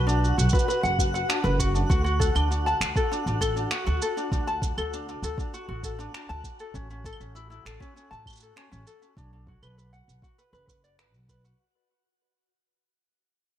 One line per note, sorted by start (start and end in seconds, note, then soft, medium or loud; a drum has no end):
0.00 0.30 B1 medium
0.00 11.60 F#4 medium
0.00 11.60 F#5 medium
0.07 0.36 D4 medium
0.07 shaker soft
0.24 shaker soft
0.38 0.48 B1 medium
0.38 0.51 F#4 medium
0.38 shaker medium
0.49 0.66 B4 medium
0.49 kick loud
0.49 shaker medium
0.55 shaker soft
0.59 shaker soft
0.68 0.82 B4 medium
0.68 shaker soft
0.83 1.21 F#1 medium
0.83 0.97 F#5 medium
0.83 shaker soft
0.99 kick medium
0.99 shaker medium
1.14 1.27 F#5 medium
1.14 shaker soft
1.29 1.42 D4 medium
1.29 finger snap medium
1.29 shaker soft
1.44 1.82 F#1 medium
1.44 1.57 B4 medium
1.44 shaker soft
1.59 1.73 F#4 medium
1.59 kick medium
1.59 shaker medium
1.74 1.88 D4 medium
1.74 shaker soft
1.90 2.28 D2 medium
1.90 2.03 F#4 medium
1.90 kick loud
1.90 shaker soft
2.04 2.18 F#4 medium
2.04 shaker soft
2.19 2.33 A4 medium
2.19 kick loud
2.19 shaker medium
2.35 2.73 D2 medium
2.35 2.49 D4 loud
2.35 claves medium
2.35 shaker soft
2.51 2.64 D4 medium
2.51 shaker soft
2.66 2.94 A5 medium
2.66 shaker soft
2.81 2.91 D2 medium
2.81 finger snap medium
2.81 shaker medium
2.96 3.10 A4 medium
2.96 kick medium
2.96 shaker soft
3.12 3.25 D4 loud
3.12 shaker soft
3.26 3.64 A1 medium
3.26 3.40 D4 medium
3.26 shaker soft
3.41 3.54 A4 medium
3.41 kick medium
3.41 claves medium
3.41 shaker medium
3.56 3.70 D4 medium
3.56 shaker soft
3.71 3.85 F#4 medium
3.71 finger snap medium
3.71 shaker soft
3.86 3.97 D2 medium
3.86 4.00 F#4 loud
3.86 shaker soft
4.02 4.15 A4 medium
4.02 shaker medium
4.17 4.30 D4 medium
4.17 shaker soft
4.32 4.70 D2 medium
4.32 4.46 D4 medium
4.32 kick medium
4.32 shaker soft
4.47 4.76 A5 medium
4.47 shaker soft
4.62 kick medium
4.62 shaker medium
4.78 5.15 D2 medium
4.78 4.92 A4 medium
4.78 claves medium
4.78 shaker soft
4.93 5.07 D4 medium
4.93 shaker soft
5.09 5.22 D4 medium
5.09 shaker soft
5.22 5.33 D2 medium
5.22 5.37 A4 medium
5.22 shaker medium
5.38 5.52 D4 medium
5.38 kick medium
5.38 shaker soft
5.54 5.67 F#4 medium
5.54 shaker soft
5.68 6.06 A1 medium
5.68 5.82 F#4 medium
5.83 5.97 A4 medium
5.83 kick soft
5.83 shaker medium
5.99 6.12 D4 medium
5.99 shaker soft
6.14 6.27 D4 medium
6.14 finger snap medium
6.14 shaker soft
6.29 6.40 D2 medium
6.29 6.58 A5 medium
6.29 shaker soft
6.44 kick soft
6.44 shaker medium
6.59 6.74 A4 medium
6.59 shaker soft
6.74 7.12 A1 medium
6.74 6.89 C#4 medium
6.74 kick medium
6.74 shaker soft
6.90 7.03 C#4 medium
6.90 shaker soft
7.04 7.19 A4 medium
7.04 kick medium
7.04 shaker medium
7.13 claves medium
7.20 7.58 A1 medium
7.20 7.34 C#4 medium
7.20 shaker soft
7.35 7.48 E4 medium
7.35 shaker soft
7.50 7.64 E4 medium
7.50 shaker soft
7.65 7.76 A1 medium
7.65 7.79 A4 medium
7.65 finger snap medium
7.65 shaker medium
7.80 7.94 C#4 medium
7.80 kick medium
7.80 shaker soft
7.96 8.09 C#4 medium
7.96 shaker soft
8.11 8.49 A2 medium
8.11 8.39 A5 medium
8.11 shaker soft
8.26 kick soft
8.26 claves medium
8.26 shaker soft
8.30 shaker soft
8.33 shaker soft
8.35 shaker soft
8.37 shaker medium
8.40 8.56 A4 medium
8.40 shaker medium
8.56 8.70 C#4 medium
8.56 finger snap medium
8.71 8.82 A1 medium
8.71 8.85 C#4 medium
8.71 shaker soft
8.87 9.00 A4 medium
8.87 shaker medium
9.02 9.15 C#4 medium
9.02 shaker soft
9.17 9.55 B1 medium
9.17 9.30 D4 medium
9.17 kick loud
9.17 shaker soft
9.33 9.46 D4 medium
9.47 9.61 F#4 medium
9.47 kick medium
9.62 10.00 B1 medium
9.62 9.76 B4 medium
9.62 claves medium
9.62 shaker soft
9.78 9.91 B4 medium
9.78 shaker soft
9.93 10.21 F#5 medium
9.93 shaker soft
10.08 10.18 B1 medium
10.08 shaker medium
10.22 10.37 F#4 medium
10.22 kick medium
10.22 shaker soft
10.38 10.52 B4 medium
10.38 shaker soft
10.53 11.14 F#1 medium
10.53 10.67 B4 medium
10.53 shaker soft
10.68 10.82 B4 medium
10.68 kick soft
10.68 shaker medium
10.84 10.97 D5 medium
10.84 shaker soft
10.99 11.12 B4 medium
10.99 finger snap medium
10.99 shaker soft
11.14 11.51 B1 medium
11.14 shaker soft
11.28 11.43 B4 medium
11.28 kick soft
11.28 shaker medium
11.44 11.58 F#4 medium
11.44 shaker soft